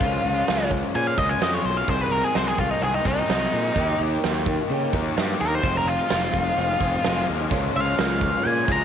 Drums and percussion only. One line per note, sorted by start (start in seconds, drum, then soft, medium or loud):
0.01 kick loud
0.01 open hi-hat medium
0.48 snare medium
0.48 open hi-hat medium
0.71 kick medium
0.95 open hi-hat medium
1.18 kick medium
1.41 snare loud
1.41 open hi-hat medium
1.88 kick loud
1.88 open hi-hat medium
2.34 snare medium
2.34 open hi-hat medium
2.58 kick medium
2.82 open hi-hat medium
3.05 kick medium
3.29 snare loud
3.29 open hi-hat medium
3.76 kick loud
3.76 open hi-hat medium
4.23 snare medium
4.23 open hi-hat medium
4.46 kick medium
4.70 open hi-hat medium
4.93 kick medium
5.17 snare loud
5.17 open hi-hat medium
5.63 kick loud
5.63 open hi-hat medium
6.10 snare loud
6.10 open hi-hat medium
6.34 kick medium
6.57 open hi-hat medium
6.81 kick medium
7.04 snare loud
7.04 open hi-hat medium
7.51 kick loud
7.51 open hi-hat medium
7.98 snare loud
7.98 open hi-hat medium
8.21 kick medium
8.45 open hi-hat medium
8.68 kick medium